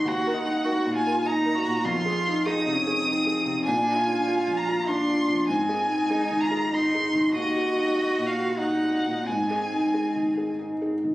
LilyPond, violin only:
\new Staff \with { instrumentName = "Violin" } { \time 3/4 \key ees \dorian \tempo 4 = 98 ges''4. aes''8 bes''4 | c'''4 ees'''2 | aes''4. bes''8 c'''4 | aes''4. bes''8 c'''4 |
ees''4. f''8 ges''4 | aes''2 r4 | }